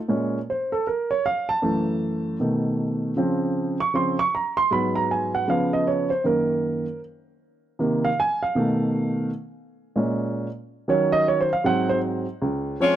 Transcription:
0.08 A#2 G#3 C#4
0.50 C5
0.72 A4
0.87 A#4
1.11 C#5
1.26 F5
1.49 A5
1.62 F#2 E3 A3
2.40 B2 D#3 A3
3.17 C#3 F3 C4
3.80 C#6
3.94 C#3 F3 C4 C6
4.19 C#6
4.35 A#5
4.57 C6
4.71 G#2 F#3 B3 B5
4.96 A#5
5.11 G#5
5.35 F#5
5.48 C#3 F3 B3 F5
5.73 D#5
5.87 C#5
6.10 C5
6.24 F#2 D#3 A#3 A#4
7.79 C3 D#3 A#3
8.05 F5
8.20 G#5
8.43 F5
8.55 B2 D#3 A3
9.96 A#2 G#3 C#4
10.88 D#3 F#3 C#4 C#5
11.12 D#5
11.28 C#5
11.41 C5
11.53 F5
11.64 G#2 F#3 C4 F#5
11.89 C5
12.42 C#2
12.80 F3 G#3 C4 C#4 F4 C#5

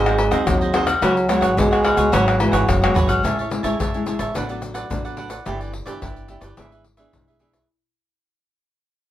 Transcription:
Already playing: G#1 G#2 F#3 G#3 C4 D#4
0.06 G#4 C5 D#5, pandeiro, tamborim, shaker
0.18 muted cavaquinho stroke, pandeiro, low agogo
0.31 D#2 F#3 C4 D#4 G#4 C5 D#5, pandeiro, tamborim, shaker
0.47 D#2 D#3 F#3, pandeiro, tamborim, shaker, surdo
0.61 G#4 C5 D#5, pandeiro, shaker
0.73 F#3 C4 D#4 F#4 G#4 C5 D#5, pandeiro, tamborim
0.86 G#4 C5 D#5, pandeiro, tamborim, high agogo, shaker
1.02 C#2 C#3 F#3 G#3 B3 F#4 B4 C#5 F#5, pandeiro, tamborim, low agogo, shaker, surdo
1.16 muted cavaquinho stroke, pandeiro, shaker
1.29 G#3 B3 F#4 B4 C#5 F#5, pandeiro, tamborim, shaker
1.41 G#1 B4 C#5 F#5, pandeiro, tamborim, shaker
1.57 C#2 G#2 G#3 B3 F#4, pandeiro, shaker, surdo
1.71 B4 C#5 F#5, pandeiro, tamborim, shaker
1.83 F#4 B4 C#5 F#5, pandeiro, tamborim, high agogo
1.97 C#2 G#3 B3 F#4 B4 C#5 F#5, pandeiro, shaker
2.12 G#1 C#3 F#3 G#3 B3 F#4 B4 C#5 F#5, pandeiro, low agogo, shaker, surdo
2.26 B4 C#5 F#5, pandeiro, tamborim, shaker
2.39 E3 G#3 B3 F#4, muted cavaquinho stroke, pandeiro, low agogo
2.52 G#1 B4 C#5 F#5, pandeiro, tamborim, shaker
2.68 F#1 G#2 F#3, pandeiro, tamborim, shaker, surdo
2.82 G#3 B3 F#4 B4 C#5 F#5, pandeiro, tamborim, shaker
2.94 G#1 F#4 B4 C#5 F#5, surdo, pandeiro, shaker
3.08 B4 C#5 F#5, pandeiro, high agogo, shaker, surdo
3.23 A1 A2 G#3 C#4 E4 G#4 C#5 E5 A5, pandeiro, shaker, surdo
3.38 C#5 E5 A5, pandeiro, shaker
3.50 G#3 C#4 E4, muted cavaquinho stroke, pandeiro
3.63 A1 G#3 C#4 E4 C#5 E5 A5, pandeiro, shaker
3.79 A1 E3 G#4 C#5 E5 A5, pandeiro, shaker, surdo
3.94 G#3 C#4 E4, pandeiro, shaker
4.06 G#3 C#4 E4 G#4 C#5 E5 A5, pandeiro, shaker
4.19 A1 C#5 E5 A5, pandeiro, shaker
4.34 A1 A2 F#3 B3 D4 B4 D5 F#5, pandeiro, shaker, surdo
4.49 F#3 B3 D4 B4 D5 F#5, pandeiro, shaker
4.62 muted cavaquinho stroke, pandeiro, shaker
4.74 B4 D5 F#5, pandeiro, shaker
4.90 A1 A2 F#3 B3 D4, pandeiro, shaker, surdo
5.05 B4 D5 F#5, pandeiro, shaker
5.17 D4 B4 D5 F#5, pandeiro
5.30 B4 D5 F#5, pandeiro, shaker
5.45 G1 G2 E3 B3 D4 E4 G4 B4 D5, pandeiro, shaker, surdo
5.60 G4 B4 D5, pandeiro, shaker
5.73 muted cavaquinho stroke, pandeiro
5.86 G1 E3 B3 D4 G4 B4 D5, pandeiro, shaker
6.01 G1 D3 E4 G4 B4 D5, pandeiro, shaker, surdo
6.16 pandeiro, shaker
6.28 E3 B3 D4 E4 G4 B4 D5, pandeiro
6.41 G1 G4 B4 D5, pandeiro, shaker
6.57 G#1 G#2 E3 B3 D4 G#4 B4 E5, pandeiro, shaker, surdo
6.71 G#4 B4 E5, pandeiro, shaker
6.84 muted cavaquinho stroke, pandeiro
6.97 E3 B3 D4 G#4 B4 E5, pandeiro, shaker
7.13 B1 G#2, pandeiro, shaker, surdo
7.28 G#4 B4 E5, pandeiro, shaker
7.39 E3 B3 D4 G#4 B4 E5, pandeiro
7.53 G#4 B4 E5, pandeiro, shaker

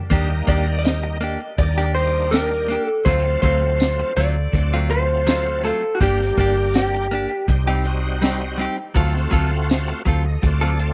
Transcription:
0.10 D#2 G3 A#3 D4 D#4 G4, kick, closed hi-hat
0.30 muted clean electric guitar stroke
0.47 D#2 A#3 D4 G4 D5, kick, closed hi-hat
0.67 muted clean electric guitar stroke
0.79 D5
0.85 D#5, snare, closed hi-hat, tambourine
1.03 muted clean electric guitar stroke
1.21 A#3 D4 G4, closed hi-hat
1.40 muted clean electric guitar stroke
1.57 D#2 G3 A#3 D4 D#4 D5, muted clean electric guitar stroke, kick, closed hi-hat
1.78 A#3 D4 G4
1.95 G3 A#3 D4 D#4 C5, closed hi-hat
2.31 A#3 D4 A#4, snare, closed hi-hat, tambourine
2.36 G4
2.51 muted clean electric guitar stroke
2.68 A#3 D4 G4, closed hi-hat
2.84 A4
2.89 muted clean electric guitar stroke
3.05 D2 F#3 A3 C4 F4 C5, kick, closed hi-hat
3.26 muted clean electric guitar stroke
3.42 D2 F#3 A3 C4 F4 C5, kick, closed hi-hat
3.63 muted clean electric guitar stroke
3.80 snare, closed hi-hat, tambourine
4.00 muted clean electric guitar stroke
4.17 D2 F#3 A3 C4 F4 D5, closed hi-hat
4.36 muted clean electric guitar stroke
4.52 D2 F#3 A3 C4 D4, muted clean electric guitar stroke, kick, closed hi-hat
4.74 F#3 A3 C4 F4
4.89 F#3 A3 C4 F4 C5, muted clean electric guitar stroke, closed hi-hat
5.27 F#3 A3 C4 F4, snare, closed hi-hat, tambourine
5.47 muted clean electric guitar stroke
5.64 F#3 A3 C4 F4 A4, closed hi-hat
5.84 muted clean electric guitar stroke
5.95 F#4
6.00 G1 G3 A#3 D4 G4, kick, closed hi-hat
6.20 muted clean electric guitar stroke, snare
6.38 G1 A#3 D4 G4, kick, closed hi-hat
6.58 muted clean electric guitar stroke
6.74 G4, snare, closed hi-hat, tambourine
6.95 muted clean electric guitar stroke
7.11 A#3 D4 G4, closed hi-hat
7.31 muted clean electric guitar stroke
7.48 C2 G3 C4 D#4 G4, muted clean electric guitar stroke, kick, closed hi-hat
7.67 G3 C4 D#4 G4
7.84 G3 C4 D#4 F#4, muted clean electric guitar stroke, closed hi-hat
8.22 G3 C4 D#4 G4, snare, closed hi-hat, tambourine
8.42 muted clean electric guitar stroke
8.58 G3 C4 D#4 G4, closed hi-hat
8.78 muted clean electric guitar stroke
8.95 D2 F#3 A3 C4 F4 F#4 A4, kick, closed hi-hat
9.14 muted clean electric guitar stroke, snare
9.31 D2 F#3 C4 F4 A4, kick, closed hi-hat
9.51 muted clean electric guitar stroke
9.69 snare, closed hi-hat, tambourine
9.88 muted clean electric guitar stroke
10.05 D2 F#3 C4 F4 A4 C5, kick, closed hi-hat
10.25 D#5, muted clean electric guitar stroke
10.42 D2 A3 C4 F4 F#4 D5, muted clean electric guitar stroke, kick, closed hi-hat
10.61 F#3 C4 F4 A4
10.79 A3 C4 F4 A4, muted clean electric guitar stroke, closed hi-hat

